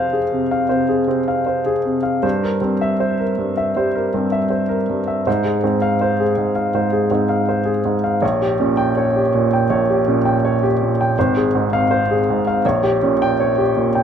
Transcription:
0.00 0.66 F2 medium
0.00 0.32 C3 soft
0.00 0.17 C4 soft
0.00 0.13 G#4 soft
0.00 0.69 C5 medium
0.00 0.51 F5 medium
0.13 0.43 G#4 soft
0.32 0.62 C3 soft
0.51 0.81 F5 soft
0.69 1.06 C3 soft
0.69 1.00 C5 soft
0.89 1.19 G#4 soft
1.08 1.38 C3 soft
1.08 1.70 C4 soft
1.28 1.58 F5 soft
1.46 1.77 C5 soft
1.66 1.97 G#4 soft
1.85 2.16 C3 soft
2.03 2.23 F5 soft
2.23 2.60 G2 medium
2.23 2.54 C5 soft
2.43 2.73 A#4 soft
2.61 2.92 G2 soft
2.61 3.23 C4 soft
2.81 3.12 E5 medium
3.00 3.31 C5 medium
3.19 3.49 A#4 soft
3.38 3.68 G2 soft
3.57 3.87 E5 soft
3.77 4.37 G3 soft
3.77 4.06 C5 soft
3.95 4.25 A#4 soft
4.14 4.44 G2 soft
4.14 4.74 C4 soft
4.32 4.62 E5 soft
4.50 4.81 C5 soft
4.69 5.00 A#4 soft
4.90 5.19 G2 soft
5.08 5.26 E5 soft
5.27 5.62 G#2 medium
5.27 5.56 C5 soft
5.44 5.74 G#4 soft
5.64 5.93 G#2 soft
5.64 6.23 C4 soft
5.82 6.12 F5 medium
6.01 6.30 C5 soft
6.20 6.49 G#4 soft
6.38 6.67 G#2 soft
6.56 6.85 F5 soft
6.74 7.10 G#2 soft
6.74 7.04 C5 soft
6.92 7.22 G#4 soft
7.11 7.41 G#2 soft
7.11 7.71 C4 soft
7.29 7.59 F5 soft
7.49 7.78 C5 soft
7.65 7.96 G#4 soft
7.85 8.15 G#2 soft
8.04 8.22 F5 soft
8.22 9.66 A#1 medium
8.22 8.52 C#5 soft
8.41 8.71 G4 soft
8.60 8.89 A#2 soft
8.60 9.19 C#4 soft
8.77 9.07 G5 medium
8.97 9.26 C#5 medium
9.16 9.45 G4 soft
9.35 9.63 A#2 soft
9.53 9.81 G5 soft
9.70 11.11 A#1 soft
9.70 9.99 C#5 medium
9.90 10.18 G4 soft
10.08 10.36 A#2 soft
10.08 10.65 C#4 soft
10.25 10.54 G5 soft
10.45 10.73 C#5 medium
10.63 10.91 G4 soft
10.82 11.10 A#2 soft
11.01 11.17 G5 medium
11.19 12.62 G#1 medium
11.19 11.46 C5 medium
11.37 11.65 G#4 soft
11.55 11.83 G#2 soft
11.55 12.13 C4 soft
11.73 12.02 F5 medium
11.91 12.20 C5 medium
12.11 12.39 G#4 soft
12.30 12.58 G#2 soft
12.47 12.65 F5 soft
12.65 14.03 A#1 medium
12.65 12.95 C#5 medium
12.83 13.13 G4 medium
13.03 13.32 A#2 soft
13.03 13.61 C#4 soft
13.22 13.51 G5 medium
13.40 13.69 C#5 medium
13.58 13.87 G4 medium
13.77 14.03 A#2 soft
13.95 14.03 G5 soft

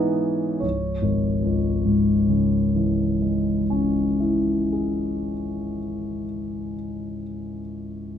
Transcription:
0.00 0.66 E3 soft
0.00 0.65 B3 soft
0.00 0.65 D#4 soft
0.00 0.65 G#4 soft
0.00 0.58 E5 soft
0.00 0.61 F#5 medium
0.00 0.59 B5 soft
0.00 0.61 D#6 soft
0.00 0.62 G#6 soft
0.60 3.64 C#1 soft
0.60 3.63 C#5 soft
1.02 4.04 G#1 soft
1.42 4.45 C#2 soft
1.85 4.88 G#2 soft
2.29 5.32 C#3 soft
2.75 5.78 E3 soft
3.22 6.25 G#3 soft
3.70 6.73 C#4 soft
4.20 7.23 E4 soft
4.72 7.59 G#4 soft

